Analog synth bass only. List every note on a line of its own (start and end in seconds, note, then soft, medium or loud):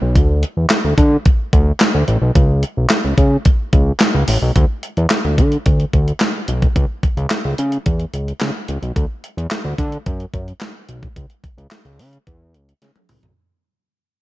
0.02 0.17 B1 medium
0.16 0.44 D2 loud
0.57 0.66 E2 medium
0.85 0.94 D2 loud
0.98 1.17 D3 loud
1.53 1.72 D2 medium
1.94 2.04 D2 medium
2.08 2.18 A1 medium
2.22 2.31 B1 medium
2.35 2.64 C#2 loud
2.77 2.87 B1 medium
3.05 3.14 C#2 medium
3.18 3.37 C#3 loud
3.73 3.92 C#2 medium
4.14 4.24 C#2 medium
4.28 4.38 A1 loud
4.42 4.52 B1 medium
4.56 4.65 D2 loud
4.97 5.07 E2 loud
5.25 5.40 D2 loud
5.38 5.57 D3 loud
5.66 5.85 D2 medium
5.93 6.13 D2 medium
6.48 6.68 B1 medium
6.76 6.85 C#2 loud
7.17 7.27 C#2 loud
7.45 7.54 C#2 loud
7.59 7.78 C#3 loud
7.86 8.05 E2 loud
8.14 8.33 C#2 medium
8.41 8.51 C#3 medium
8.69 8.78 C#2 medium
8.82 8.92 B1 medium
8.96 9.06 D2 loud
9.37 9.47 E2 medium
9.65 9.74 D2 loud
9.78 9.98 D3 loud
10.07 10.26 F#2 medium
10.34 10.53 F#2 loud
10.89 11.08 B1 medium
11.16 11.26 C#2 loud
11.57 11.67 C#2 medium
11.85 12.00 C#2 loud
11.99 12.18 C#3 loud
12.27 12.56 E2 medium
12.54 12.73 C#2 medium
12.82 12.91 C#3 medium
13.09 13.19 C#2 medium
13.23 13.33 B1 loud